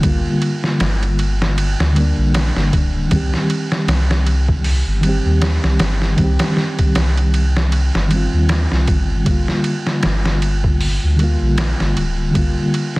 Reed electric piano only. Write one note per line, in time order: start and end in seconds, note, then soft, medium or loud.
0.00 1.93 D3 medium
0.00 0.03 G3 medium
0.00 1.92 G3 medium
0.00 0.06 A#3 medium
0.00 0.08 F4 medium
0.06 1.93 A#3 medium
0.06 1.94 F4 medium
1.93 3.06 D3 medium
1.93 3.07 G3 medium
1.98 3.08 A#3 medium
1.98 3.10 D4 loud
3.08 4.98 D#3 medium
3.08 4.99 G3 medium
3.13 5.01 C4 medium
3.13 5.02 G4 medium
5.01 6.14 D#3 medium
5.01 6.15 G3 medium
5.06 6.16 C4 medium
5.06 6.18 G4 loud
6.16 8.06 D#3 medium
6.16 8.07 G3 medium
6.21 8.08 C4 medium
6.21 8.10 G4 medium
8.08 9.21 D#3 medium
8.08 9.23 G3 medium
8.14 9.24 C4 medium
8.14 9.25 F4 medium
9.24 11.14 D3 medium
9.24 11.15 G3 medium
9.29 11.16 A#3 medium
9.29 11.17 F4 medium
11.16 12.29 D3 medium
11.16 12.30 G3 medium
11.22 12.32 A#3 medium
11.22 12.33 F4 loud
12.31 12.99 D3 medium
12.31 12.99 G3 medium
12.36 12.99 A#3 medium
12.36 12.99 F4 medium